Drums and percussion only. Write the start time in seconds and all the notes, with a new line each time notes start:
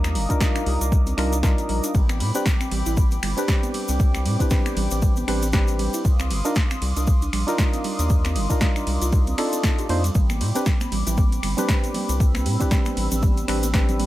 0.04 finger snap, snare, shaker
0.15 open hi-hat
0.30 kick, closed hi-hat, shaker
0.40 kick, snare, shaker
0.56 finger snap, closed hi-hat, shaker
0.66 open hi-hat
0.81 closed hi-hat, shaker
0.92 kick, shaker
1.07 closed hi-hat, shaker
1.18 finger snap, open hi-hat
1.33 closed hi-hat, shaker
1.43 kick, snare, shaker
1.58 closed hi-hat, shaker
1.69 open hi-hat
1.83 closed hi-hat, shaker
1.94 kick, ride, shaker
2.09 finger snap, shaker
2.20 open hi-hat, ride
2.35 closed hi-hat, shaker
2.46 kick, snare, ride, shaker
2.61 finger snap, closed hi-hat, shaker
2.71 open hi-hat, ride
2.86 closed hi-hat, shaker
2.97 kick, ride, shaker
3.11 closed hi-hat, shaker
3.23 finger snap, open hi-hat, ride
3.38 closed hi-hat, shaker
3.48 kick, snare, ride, shaker
3.63 closed hi-hat, shaker
3.74 open hi-hat, ride
3.88 closed hi-hat, shaker
4.00 kick, ride, shaker
4.14 finger snap, snare, shaker
4.26 open hi-hat, ride
4.40 kick, closed hi-hat, shaker
4.50 kick, snare, ride, shaker
4.66 finger snap, closed hi-hat, shaker
4.77 open hi-hat, ride
4.91 closed hi-hat, shaker
5.02 kick, ride, shaker
5.16 closed hi-hat, shaker
5.28 finger snap, open hi-hat, ride
5.43 closed hi-hat, shaker
5.53 kick, snare, ride, shaker
5.67 closed hi-hat, shaker
5.79 open hi-hat, ride
5.93 closed hi-hat, shaker
6.05 kick, ride, shaker
6.19 finger snap, shaker
6.31 open hi-hat, ride
6.45 closed hi-hat, shaker
6.55 kick, snare, ride, shaker
6.71 finger snap, closed hi-hat, shaker
6.82 open hi-hat, ride
6.97 closed hi-hat, shaker
7.07 kick, ride, shaker
7.22 closed hi-hat, shaker
7.33 finger snap, open hi-hat, ride
7.48 closed hi-hat, shaker
7.58 kick, snare, ride, shaker
7.73 closed hi-hat, shaker
7.84 open hi-hat, ride
7.99 closed hi-hat, shaker
8.10 kick, ride, shaker
8.25 finger snap, snare, closed hi-hat, shaker
8.36 open hi-hat, ride
8.50 kick, closed hi-hat, shaker
8.61 kick, snare, ride, shaker
8.76 finger snap, closed hi-hat, shaker
8.87 open hi-hat, ride
9.02 closed hi-hat, shaker
9.12 kick, ride, shaker
9.27 closed hi-hat, shaker
9.38 finger snap, open hi-hat, ride
9.53 closed hi-hat, shaker
9.63 kick, snare, ride, shaker
9.78 closed hi-hat, shaker
9.89 open hi-hat, ride
10.04 closed hi-hat, shaker
10.15 kick, ride, shaker
10.30 finger snap, high conga, shaker
10.41 open hi-hat, ride
10.55 closed hi-hat, shaker
10.66 kick, snare, ride, shaker
10.81 finger snap, closed hi-hat, high conga, shaker
10.92 open hi-hat, ride
11.07 closed hi-hat, low conga, shaker
11.17 kick, ride, high conga, shaker
11.32 closed hi-hat, shaker
11.43 finger snap, open hi-hat, ride
11.58 closed hi-hat, high conga, low conga, shaker
11.69 kick, snare, ride, shaker
11.84 closed hi-hat, shaker
11.94 open hi-hat, ride, high conga, low conga
12.09 closed hi-hat, shaker
12.20 kick, ride, shaker
12.34 finger snap, snare, high conga, shaker
12.46 open hi-hat, ride
12.60 kick, closed hi-hat, shaker
12.71 kick, snare, ride, shaker
12.85 finger snap, closed hi-hat, high conga, shaker
12.97 open hi-hat, ride
13.11 closed hi-hat, low conga, shaker
13.22 kick, ride, high conga, shaker
13.37 closed hi-hat, shaker
13.48 finger snap, open hi-hat, ride
13.63 closed hi-hat, high conga, shaker
13.74 kick, snare, ride, shaker
13.89 closed hi-hat, low conga, shaker
13.99 open hi-hat, ride, high conga